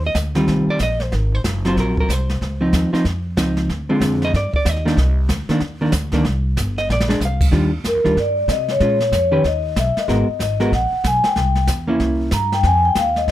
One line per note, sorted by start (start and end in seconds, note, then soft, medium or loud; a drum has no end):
0.00 0.14 D#2 loud
0.07 0.17 D#5 loud
0.15 0.46 D2 medium
0.15 kick soft
0.15 snare medium
0.15 hi-hat pedal medium
0.35 0.77 D#3 medium
0.35 0.78 G3 medium
0.35 0.78 C4 medium
0.35 0.78 F4 medium
0.35 snare soft
0.47 0.66 C2 medium
0.47 brush sweep soft
0.47 kick soft
0.47 snare soft
0.67 0.81 D5 medium
0.67 muted upright bass stroke soft
0.79 1.11 A#1 medium
0.79 1.03 D#5 loud
0.79 kick soft
0.79 snare medium
0.79 hi-hat pedal medium
1.00 1.15 C5 loud
1.00 snare soft
1.12 1.44 G#1 loud
1.12 1.35 A#4 medium
1.12 brush sweep soft
1.12 kick soft
1.12 snare soft
1.35 1.41 C5 medium
1.44 1.75 F#1 medium
1.44 kick soft
1.44 snare medium
1.44 hi-hat pedal medium
1.65 2.07 F#3 medium
1.65 2.07 C4 medium
1.65 2.07 F4 medium
1.65 1.78 C5 medium
1.65 snare soft
1.77 2.08 A#1 medium
1.77 1.98 A#4 medium
1.77 brush sweep soft
1.77 kick soft
1.77 snare soft
1.97 2.13 A#4 medium
1.97 kick medium
2.09 2.40 C2 loud
2.09 kick soft
2.09 snare medium
2.09 hi-hat pedal medium
2.13 2.63 C5 medium
2.29 snare soft
2.41 2.72 C#2 medium
2.41 brush sweep medium
2.41 kick soft
2.41 snare soft
2.61 2.91 F3 medium
2.61 2.91 C4 medium
2.61 2.91 D#4 medium
2.73 2.91 D#2 medium
2.73 kick soft
2.73 snare medium
2.73 hi-hat pedal medium
2.93 3.04 F3 medium
2.93 3.04 C4 medium
2.93 3.04 D#4 medium
2.93 muted upright bass stroke soft
2.93 snare soft
3.05 3.36 F2 medium
3.05 brush sweep soft
3.05 kick soft
3.05 snare soft
3.37 3.68 C#2 medium
3.37 3.69 F3 soft
3.37 3.69 C4 medium
3.37 3.70 D#4 medium
3.37 kick soft
3.37 snare medium
3.37 hi-hat pedal medium
3.57 snare soft
3.69 4.00 D2 loud
3.69 brush sweep medium
3.69 kick soft
3.69 snare soft
3.89 4.31 D3 medium
3.89 4.31 G#3 medium
3.89 4.31 C4 medium
3.89 4.31 F4 medium
4.01 4.32 F2 loud
4.01 kick soft
4.01 snare medium
4.01 hi-hat pedal medium
4.22 4.34 D#5 loud
4.22 snare soft
4.33 4.52 G2 medium
4.33 4.54 D5 medium
4.33 brush sweep soft
4.33 kick soft
4.33 snare soft
4.53 4.69 D5 medium
4.53 muted upright bass stroke soft
4.53 kick medium
4.65 4.96 D#2 loud
4.65 kick soft
4.65 snare medium
4.65 hi-hat pedal medium
4.69 5.19 D#5 medium
4.76 snare soft
4.85 4.96 D#3 medium
4.85 4.96 A#3 medium
4.85 4.97 D4 medium
4.85 snare medium
4.97 5.28 C2 loud
4.97 brush sweep soft
4.97 kick soft
4.97 snare soft
5.29 5.48 D2 loud
5.29 kick soft
5.29 snare medium
5.29 hi-hat pedal medium
5.49 5.60 D#3 medium
5.49 5.61 A#3 medium
5.49 5.61 D4 medium
5.49 muted upright bass stroke soft
5.49 snare soft
5.60 5.92 D#2 medium
5.60 brush sweep medium
5.60 kick soft
5.60 snare soft
5.81 5.92 D#3 medium
5.81 5.92 A#3 medium
5.81 5.92 D4 medium
5.92 6.24 D2 loud
5.92 kick soft
5.92 snare medium
5.92 hi-hat pedal medium
6.12 6.24 D#3 medium
6.12 6.24 A#3 medium
6.12 6.24 D4 medium
6.12 kick medium
6.12 snare soft
6.25 6.56 C2 loud
6.25 brush sweep soft
6.25 snare soft
6.57 6.88 G1 medium
6.57 kick soft
6.57 snare medium
6.57 hi-hat pedal medium
6.78 6.89 D#5 loud
6.78 snare soft
6.89 7.20 A#1 medium
6.89 7.10 D5 loud
6.89 snare medium
7.00 snare medium
7.09 7.19 G#3 medium
7.09 7.20 D4 medium
7.09 snare medium
7.20 7.52 C2 loud
7.20 snare medium
7.20 hi-hat pedal medium
7.25 7.47 F5 medium
7.41 kick medium
7.41 crash medium
7.51 7.83 D#2 loud
7.51 7.70 D#3 medium
7.51 7.71 G3 medium
7.51 7.70 D4 medium
7.51 7.71 F4 medium
7.51 brush sweep soft
7.51 snare soft
7.84 7.95 F2 medium
7.84 8.16 A#4 medium
7.84 kick soft
7.84 snare medium
7.84 hi-hat pedal medium
7.95 8.05 D#2 medium
8.04 8.16 D2 medium
8.04 8.15 D#3 medium
8.04 8.15 G3 medium
8.04 8.16 D4 medium
8.04 8.16 F4 medium
8.04 snare soft
8.16 8.48 G2 medium
8.16 8.48 D5 medium
8.16 brush sweep medium
8.16 kick soft
8.16 snare soft
8.48 8.79 C3 loud
8.48 8.70 D#5 medium
8.48 kick soft
8.48 snare medium
8.48 hi-hat pedal medium
8.68 9.11 C#5 medium
8.68 snare soft
8.80 9.11 A#2 medium
8.80 8.99 G#3 medium
8.80 8.99 C#4 medium
8.80 8.99 F4 medium
8.80 brush sweep soft
8.80 kick soft
8.80 snare soft
9.00 snare soft
9.12 9.43 F2 medium
9.12 9.43 C#5 medium
9.12 kick soft
9.12 snare medium
9.12 hi-hat pedal medium
9.31 9.43 D#3 medium
9.31 9.43 C#4 medium
9.31 9.43 G4 medium
9.31 9.43 B4 medium
9.44 9.76 D#2 medium
9.44 9.76 D#5 medium
9.44 brush sweep soft
9.44 kick soft
9.44 snare soft
9.76 9.95 B1 loud
9.76 9.97 E5 medium
9.76 kick soft
9.76 snare medium
9.76 hi-hat pedal medium
9.97 10.39 D#5 medium
9.97 muted upright bass stroke soft
9.97 snare soft
10.08 10.27 G#1 loud
10.08 10.26 G#3 medium
10.08 10.27 B3 medium
10.08 10.27 F#4 medium
10.08 10.27 A#4 medium
10.08 brush sweep soft
10.08 kick soft
10.08 snare soft
10.39 10.71 G#1 medium
10.39 10.71 D#5 medium
10.39 kick soft
10.39 snare medium
10.39 hi-hat pedal medium
10.60 10.71 G#3 medium
10.60 10.71 B3 medium
10.60 10.71 F#4 medium
10.60 10.71 A#4 medium
10.60 snare soft
10.72 10.91 A#1 medium
10.72 11.03 F#5 medium
10.72 brush sweep soft
10.72 kick soft
10.72 snare soft
10.93 muted upright bass stroke soft
11.04 11.23 B1 loud
11.04 11.25 G#5 medium
11.04 kick soft
11.04 snare medium
11.04 hi-hat pedal medium
11.24 11.65 G5 medium
11.24 muted upright bass stroke soft
11.24 snare medium
11.36 11.67 C2 loud
11.36 brush sweep soft
11.36 kick soft
11.36 snare soft
11.55 snare soft
11.68 11.99 E2 loud
11.68 kick soft
11.68 snare medium
11.68 hi-hat pedal medium
11.88 12.29 A#3 medium
11.88 12.30 C#4 medium
11.88 12.30 E4 medium
12.00 12.31 C2 medium
12.00 brush sweep medium
12.00 kick soft
12.00 snare soft
12.31 12.63 G2 loud
12.31 12.52 A#5 medium
12.31 kick soft
12.31 snare medium
12.31 hi-hat pedal medium
12.52 12.64 G5 loud
12.52 snare soft
12.63 12.95 F2 loud
12.63 12.85 G#5 loud
12.63 brush sweep soft
12.63 kick soft
12.63 snare soft
12.85 12.96 G5 medium
12.95 13.27 D#2 medium
12.95 13.17 F5 medium
12.95 kick soft
12.95 snare medium
12.95 hi-hat pedal medium
13.16 13.28 D#5 medium
13.16 snare soft
13.28 13.31 G2 medium
13.28 brush sweep soft
13.28 kick soft
13.28 snare soft